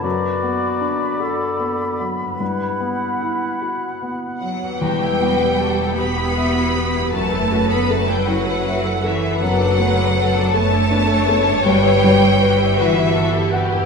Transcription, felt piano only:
X:1
M:6/8
L:1/8
Q:3/8=52
K:Edor
V:1 name="Felt piano"
F,, B, D F B, F, | G,, B, E F B, F, | E,, B, G B e B | F,, A, A E e A |
F,, A, B A D A | G,, G, B F e f |]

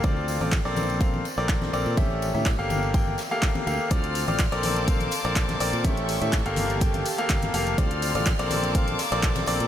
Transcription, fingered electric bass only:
X:1
M:4/4
L:1/16
Q:1/4=124
K:Dm
V:1 name="Fingered electric bass" clef=bass
D,,3 A,,,2 B,,,4- B,,, z B,,,3 B,,, B,, | A,,,3 A,,2 G,,,4- G,,, z4 D,, z | D,,3 A,,,2 B,,,4- B,,, z B,,,3 B,,, B,, | A,,,3 A,,2 G,,,4- G,,, z2 G,,,2 F,,,2 |
D,,3 A,,,2 B,,,4- B,,, z B,,,3 B,,, B,, |]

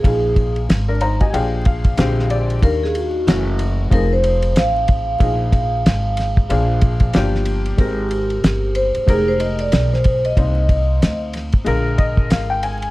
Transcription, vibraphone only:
X:1
M:4/4
L:1/16
Q:"Swing 16ths" 1/4=93
K:Bbmix
V:1 name="Vibraphone"
A3 z12 z | B A ^F4 z2 B c3 =f4- | f12 z4 | G6 c2 A c e d2 c2 e- |
e4- e z8 z3 |]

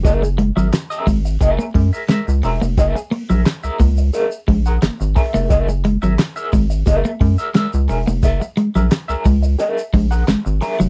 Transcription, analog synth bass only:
X:1
M:4/4
L:1/16
Q:1/4=88
K:Gb
V:1 name="Analog synth bass" clef=bass
G,,,3 A,,, z2 A,,,2 G,,, z G,, z2 D,, _F,,, =F,,, | G,,, z2 B,,, z D,, D,,2 z2 B,,,2 A,,, A,,, z F,,, | G,,,3 A,,, z2 A,,,2 G,,, z G,, z2 D,, _F,,, =F,,, | G,,, z2 B,,, z D,, D,,2 z2 B,,,2 A,,, A,,, z F,,, |]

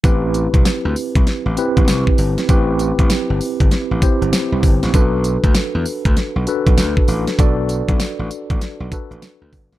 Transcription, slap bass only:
X:1
M:4/4
L:1/16
Q:"Swing 16ths" 1/4=98
K:Ador
V:1 name="Slap bass" clef=bass
A,,,3 C,, z D,, z C,, z A,,, z A,,, C,, z G,,, z | A,,,3 A,,, z G,,, z G,,, z A,,, z G,,, z C,, G,,, A,,, | B,,,3 D,, z E,, z D,, z B,,, z B,,, D,, z A,,, z | B,,,3 B,,, z A,,, z A,,, z B,,, z A,,, z D,, G,,, A,,, |]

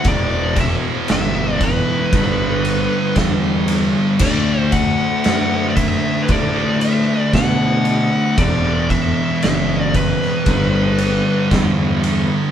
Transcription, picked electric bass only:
X:1
M:4/4
L:1/8
Q:1/4=58
K:Em
V:1 name="Picked electric bass" clef=bass
E,,,2 G,,,2 G,,,2 E,,2 | D,,2 F,,2 A,,2 B,,2 | E,,,2 F,,,2 G,,,2 E,,2 |]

